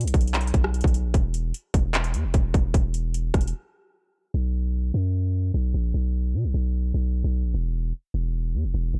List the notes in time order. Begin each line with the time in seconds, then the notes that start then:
0.01 B1, closed hi-hat
0.07 closed hi-hat
0.14 B1, kick, closed hi-hat
0.21 closed hi-hat
0.27 closed hi-hat
0.34 clap, closed hi-hat
0.41 closed hi-hat
0.47 closed hi-hat
0.54 B1, kick, closed hi-hat
0.64 cross-stick
0.74 closed hi-hat
0.81 B1, kick, closed hi-hat
0.87 closed hi-hat
0.94 closed hi-hat
1.04 A#1
1.14 E1, kick, closed hi-hat
1.34 closed hi-hat
1.54 closed hi-hat
1.74 E1, kick, closed hi-hat
1.94 clap, closed hi-hat
2.04 closed hi-hat
2.14 E2, closed hi-hat
2.24 E1
2.34 E1, kick, closed hi-hat
2.54 E1, kick, closed hi-hat
2.74 E1, kick, closed hi-hat
2.94 closed hi-hat
3.14 closed hi-hat
3.34 E1, kick, cross-stick, closed hi-hat, open hi-hat
3.41 closed hi-hat
3.47 closed hi-hat
4.34 B1
4.94 F#2
5.54 B1
5.74 A#1
5.94 B1
6.34 B2
6.44 B1
6.54 B1
6.94 B1
7.24 B1
7.44 A#1
7.54 E1
8.14 E1
8.54 E2
8.64 E1
8.74 E1
8.94 E1